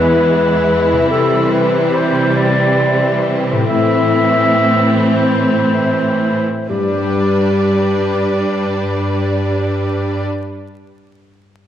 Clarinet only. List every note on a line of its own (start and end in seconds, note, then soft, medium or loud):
0.00 1.09 B4 medium
1.10 1.55 A4 medium
1.53 1.96 B4 soft
1.94 2.37 C5 medium
2.36 3.40 D5 medium
3.69 5.08 E5 medium
5.14 6.67 C5 soft
6.69 10.24 G4 soft